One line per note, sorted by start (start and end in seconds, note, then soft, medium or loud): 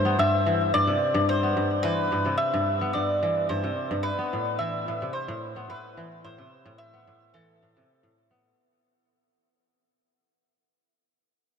0.00 0.17 G2 medium
0.00 1.22 A3 medium
0.00 0.15 C5 loud
0.05 0.93 B3 medium
0.19 0.73 G2 medium
0.19 0.73 E5 loud
0.46 0.93 E3 medium
0.74 0.93 G2 medium
0.74 1.25 D5 loud
0.87 1.20 C3 medium
1.14 1.55 G2 loud
1.29 1.67 C5 loud
1.43 2.32 B3 medium
1.57 2.11 G2 medium
1.83 2.30 E3 medium
1.83 2.37 B4 loud
2.12 2.30 G2 medium
2.26 2.58 C3 medium
2.38 2.93 E5 loud
2.54 2.94 G2 loud
2.81 3.70 B3 medium
2.93 3.49 G2 medium
2.93 3.49 D5 loud
3.23 3.68 E3 medium
3.49 3.68 G2 medium
3.49 3.88 C5 loud
3.64 3.95 C3 medium
3.91 4.09 G2 loud
4.03 4.58 B4 loud
4.19 5.08 B3 medium
4.33 4.87 A2 medium
4.59 5.06 E3 medium
4.59 5.13 E5 medium
4.88 5.06 A2 medium
5.02 5.33 C3 medium
5.13 5.69 C5 medium
5.28 5.68 A2 loud
5.56 6.44 B3 medium
5.69 6.24 A2 medium
5.69 6.08 B4 medium
5.97 6.43 E3 medium
6.24 6.43 A2 medium
6.24 6.78 C5 loud
6.38 6.71 C3 medium
6.65 7.06 A2 loud
6.78 7.36 E5 loud
6.93 7.83 B3 medium
7.07 7.61 A2 medium
7.34 7.81 E3 medium
7.34 8.13 A4 medium
7.63 7.81 A2 medium
7.77 8.08 C3 medium
8.03 8.50 A2 loud
8.31 10.17 B3 medium